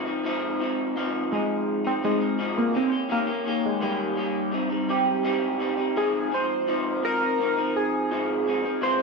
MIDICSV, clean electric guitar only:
0, 0, Header, 1, 2, 480
1, 0, Start_track
1, 0, Key_signature, -4, "major"
1, 0, Tempo, 715137
1, 162, Time_signature, 4, 2, 24, 8
1, 6056, End_track
2, 0, Start_track
2, 0, Title_t, "Clean electric guitar"
2, 0, Program_c, 0, 27
2, 35, Note_on_c, 0, 63, 58
2, 46, Note_on_c, 0, 60, 51
2, 55, Note_on_c, 0, 53, 47
2, 158, Note_off_c, 0, 63, 0
2, 159, Note_off_c, 0, 53, 0
2, 159, Note_on_c, 0, 44, 84
2, 161, Note_off_c, 0, 60, 0
2, 167, Note_on_c, 0, 53, 79
2, 169, Note_on_c, 0, 60, 89
2, 174, Note_on_c, 0, 63, 100
2, 393, Note_off_c, 0, 44, 0
2, 399, Note_off_c, 0, 53, 0
2, 401, Note_on_c, 0, 44, 63
2, 405, Note_off_c, 0, 60, 0
2, 407, Note_on_c, 0, 53, 66
2, 408, Note_off_c, 0, 63, 0
2, 413, Note_on_c, 0, 60, 73
2, 422, Note_on_c, 0, 63, 71
2, 634, Note_off_c, 0, 44, 0
2, 642, Note_off_c, 0, 53, 0
2, 642, Note_on_c, 0, 44, 74
2, 643, Note_off_c, 0, 60, 0
2, 650, Note_off_c, 0, 63, 0
2, 650, Note_on_c, 0, 53, 81
2, 651, Note_on_c, 0, 60, 84
2, 658, Note_on_c, 0, 63, 90
2, 869, Note_off_c, 0, 44, 0
2, 876, Note_off_c, 0, 53, 0
2, 877, Note_on_c, 0, 44, 59
2, 884, Note_off_c, 0, 60, 0
2, 884, Note_on_c, 0, 53, 59
2, 890, Note_off_c, 0, 63, 0
2, 892, Note_on_c, 0, 60, 63
2, 897, Note_on_c, 0, 63, 59
2, 1230, Note_off_c, 0, 63, 0
2, 1238, Note_on_c, 0, 63, 46
2, 1239, Note_off_c, 0, 44, 0
2, 1243, Note_off_c, 0, 53, 0
2, 1244, Note_off_c, 0, 60, 0
2, 1252, Note_on_c, 0, 60, 44
2, 1261, Note_on_c, 0, 53, 43
2, 1353, Note_on_c, 0, 44, 62
2, 1355, Note_off_c, 0, 53, 0
2, 1359, Note_off_c, 0, 60, 0
2, 1360, Note_off_c, 0, 63, 0
2, 1363, Note_on_c, 0, 53, 60
2, 1367, Note_on_c, 0, 60, 64
2, 1372, Note_on_c, 0, 63, 65
2, 1469, Note_off_c, 0, 63, 0
2, 1477, Note_off_c, 0, 44, 0
2, 1477, Note_on_c, 0, 63, 46
2, 1480, Note_off_c, 0, 60, 0
2, 1482, Note_off_c, 0, 53, 0
2, 1488, Note_on_c, 0, 60, 39
2, 1498, Note_on_c, 0, 53, 35
2, 1596, Note_off_c, 0, 53, 0
2, 1599, Note_off_c, 0, 63, 0
2, 1599, Note_on_c, 0, 44, 79
2, 1602, Note_off_c, 0, 60, 0
2, 1604, Note_on_c, 0, 53, 76
2, 1610, Note_on_c, 0, 60, 74
2, 1614, Note_on_c, 0, 63, 78
2, 1829, Note_off_c, 0, 53, 0
2, 1832, Note_on_c, 0, 51, 54
2, 1838, Note_off_c, 0, 60, 0
2, 1840, Note_off_c, 0, 44, 0
2, 1841, Note_on_c, 0, 58, 57
2, 1843, Note_off_c, 0, 63, 0
2, 1846, Note_on_c, 0, 61, 66
2, 1854, Note_on_c, 0, 67, 66
2, 1951, Note_off_c, 0, 67, 0
2, 1957, Note_off_c, 0, 51, 0
2, 1959, Note_on_c, 0, 67, 44
2, 1961, Note_off_c, 0, 58, 0
2, 1962, Note_off_c, 0, 61, 0
2, 1970, Note_on_c, 0, 61, 44
2, 1981, Note_on_c, 0, 58, 39
2, 2072, Note_off_c, 0, 58, 0
2, 2073, Note_on_c, 0, 51, 72
2, 2077, Note_off_c, 0, 61, 0
2, 2080, Note_off_c, 0, 67, 0
2, 2080, Note_on_c, 0, 58, 76
2, 2085, Note_on_c, 0, 61, 80
2, 2089, Note_on_c, 0, 67, 87
2, 2187, Note_off_c, 0, 67, 0
2, 2195, Note_on_c, 0, 67, 51
2, 2197, Note_off_c, 0, 51, 0
2, 2199, Note_off_c, 0, 61, 0
2, 2201, Note_off_c, 0, 58, 0
2, 2207, Note_on_c, 0, 61, 46
2, 2214, Note_on_c, 0, 58, 43
2, 2316, Note_on_c, 0, 51, 55
2, 2317, Note_off_c, 0, 58, 0
2, 2318, Note_off_c, 0, 67, 0
2, 2324, Note_off_c, 0, 61, 0
2, 2325, Note_on_c, 0, 58, 59
2, 2332, Note_on_c, 0, 61, 62
2, 2336, Note_on_c, 0, 67, 61
2, 2546, Note_off_c, 0, 51, 0
2, 2551, Note_off_c, 0, 58, 0
2, 2554, Note_on_c, 0, 51, 70
2, 2555, Note_off_c, 0, 61, 0
2, 2559, Note_off_c, 0, 67, 0
2, 2559, Note_on_c, 0, 58, 67
2, 2563, Note_on_c, 0, 61, 79
2, 2567, Note_on_c, 0, 67, 73
2, 2782, Note_off_c, 0, 51, 0
2, 2790, Note_on_c, 0, 51, 51
2, 2791, Note_off_c, 0, 58, 0
2, 2799, Note_off_c, 0, 61, 0
2, 2799, Note_on_c, 0, 58, 55
2, 2804, Note_off_c, 0, 67, 0
2, 2807, Note_on_c, 0, 61, 63
2, 2813, Note_on_c, 0, 67, 63
2, 3032, Note_on_c, 0, 44, 63
2, 3033, Note_off_c, 0, 51, 0
2, 3036, Note_on_c, 0, 55, 70
2, 3039, Note_off_c, 0, 58, 0
2, 3041, Note_on_c, 0, 60, 70
2, 3044, Note_off_c, 0, 61, 0
2, 3047, Note_off_c, 0, 67, 0
2, 3047, Note_on_c, 0, 63, 77
2, 3142, Note_off_c, 0, 63, 0
2, 3150, Note_on_c, 0, 63, 55
2, 3154, Note_off_c, 0, 60, 0
2, 3156, Note_off_c, 0, 44, 0
2, 3159, Note_off_c, 0, 55, 0
2, 3162, Note_on_c, 0, 60, 49
2, 3170, Note_on_c, 0, 55, 48
2, 3271, Note_on_c, 0, 44, 65
2, 3274, Note_off_c, 0, 55, 0
2, 3276, Note_off_c, 0, 63, 0
2, 3277, Note_off_c, 0, 60, 0
2, 3282, Note_on_c, 0, 55, 62
2, 3285, Note_on_c, 0, 60, 65
2, 3293, Note_on_c, 0, 63, 64
2, 3504, Note_off_c, 0, 44, 0
2, 3511, Note_off_c, 0, 55, 0
2, 3512, Note_on_c, 0, 44, 77
2, 3514, Note_off_c, 0, 60, 0
2, 3518, Note_off_c, 0, 63, 0
2, 3519, Note_on_c, 0, 55, 83
2, 3522, Note_on_c, 0, 60, 90
2, 3526, Note_on_c, 0, 63, 90
2, 3743, Note_off_c, 0, 44, 0
2, 3751, Note_off_c, 0, 55, 0
2, 3751, Note_on_c, 0, 44, 61
2, 3759, Note_off_c, 0, 60, 0
2, 3759, Note_on_c, 0, 55, 62
2, 3764, Note_off_c, 0, 63, 0
2, 3767, Note_on_c, 0, 60, 65
2, 3772, Note_on_c, 0, 63, 70
2, 3866, Note_off_c, 0, 63, 0
2, 3874, Note_on_c, 0, 63, 53
2, 3876, Note_off_c, 0, 44, 0
2, 3877, Note_off_c, 0, 60, 0
2, 3880, Note_off_c, 0, 55, 0
2, 3885, Note_on_c, 0, 60, 50
2, 3895, Note_on_c, 0, 55, 42
2, 3995, Note_on_c, 0, 44, 73
2, 3997, Note_off_c, 0, 60, 0
2, 3998, Note_off_c, 0, 55, 0
2, 3998, Note_off_c, 0, 63, 0
2, 4001, Note_on_c, 0, 53, 72
2, 4005, Note_on_c, 0, 60, 79
2, 4007, Note_on_c, 0, 63, 89
2, 4224, Note_off_c, 0, 44, 0
2, 4232, Note_off_c, 0, 53, 0
2, 4232, Note_on_c, 0, 44, 56
2, 4238, Note_off_c, 0, 60, 0
2, 4241, Note_on_c, 0, 53, 57
2, 4244, Note_off_c, 0, 63, 0
2, 4246, Note_on_c, 0, 60, 55
2, 4254, Note_on_c, 0, 63, 64
2, 4467, Note_off_c, 0, 44, 0
2, 4473, Note_off_c, 0, 53, 0
2, 4475, Note_on_c, 0, 44, 71
2, 4478, Note_off_c, 0, 60, 0
2, 4482, Note_on_c, 0, 53, 75
2, 4483, Note_off_c, 0, 63, 0
2, 4486, Note_on_c, 0, 60, 72
2, 4491, Note_on_c, 0, 63, 84
2, 4707, Note_off_c, 0, 44, 0
2, 4714, Note_off_c, 0, 53, 0
2, 4715, Note_on_c, 0, 44, 58
2, 4722, Note_off_c, 0, 60, 0
2, 4722, Note_on_c, 0, 53, 55
2, 4726, Note_off_c, 0, 63, 0
2, 4730, Note_on_c, 0, 60, 59
2, 4737, Note_on_c, 0, 63, 57
2, 4829, Note_off_c, 0, 63, 0
2, 4837, Note_on_c, 0, 63, 50
2, 4838, Note_off_c, 0, 44, 0
2, 4841, Note_off_c, 0, 60, 0
2, 4842, Note_off_c, 0, 53, 0
2, 4849, Note_on_c, 0, 60, 47
2, 4856, Note_on_c, 0, 53, 40
2, 4955, Note_on_c, 0, 44, 56
2, 4957, Note_off_c, 0, 53, 0
2, 4959, Note_off_c, 0, 63, 0
2, 4963, Note_off_c, 0, 60, 0
2, 4965, Note_on_c, 0, 53, 57
2, 4971, Note_on_c, 0, 60, 61
2, 4977, Note_on_c, 0, 63, 62
2, 5072, Note_off_c, 0, 63, 0
2, 5078, Note_off_c, 0, 44, 0
2, 5080, Note_on_c, 0, 63, 49
2, 5082, Note_off_c, 0, 60, 0
2, 5083, Note_off_c, 0, 53, 0
2, 5091, Note_on_c, 0, 60, 50
2, 5100, Note_on_c, 0, 53, 44
2, 5437, Note_off_c, 0, 53, 0
2, 5438, Note_on_c, 0, 44, 78
2, 5441, Note_off_c, 0, 60, 0
2, 5441, Note_off_c, 0, 63, 0
2, 5445, Note_on_c, 0, 53, 73
2, 5449, Note_on_c, 0, 60, 74
2, 5452, Note_on_c, 0, 63, 73
2, 5669, Note_off_c, 0, 44, 0
2, 5677, Note_on_c, 0, 44, 55
2, 5679, Note_off_c, 0, 53, 0
2, 5684, Note_off_c, 0, 60, 0
2, 5687, Note_off_c, 0, 63, 0
2, 5687, Note_on_c, 0, 53, 54
2, 5692, Note_on_c, 0, 60, 59
2, 5697, Note_on_c, 0, 63, 65
2, 5785, Note_off_c, 0, 63, 0
2, 5793, Note_on_c, 0, 63, 50
2, 5796, Note_off_c, 0, 60, 0
2, 5799, Note_off_c, 0, 44, 0
2, 5804, Note_off_c, 0, 53, 0
2, 5804, Note_on_c, 0, 60, 45
2, 5812, Note_on_c, 0, 53, 39
2, 5915, Note_on_c, 0, 49, 74
2, 5917, Note_off_c, 0, 53, 0
2, 5918, Note_off_c, 0, 60, 0
2, 5918, Note_off_c, 0, 63, 0
2, 5920, Note_on_c, 0, 56, 75
2, 5926, Note_on_c, 0, 60, 88
2, 5930, Note_on_c, 0, 65, 81
2, 6056, Note_off_c, 0, 49, 0
2, 6056, Note_off_c, 0, 56, 0
2, 6056, Note_off_c, 0, 60, 0
2, 6056, Note_off_c, 0, 65, 0
2, 6056, End_track
0, 0, End_of_file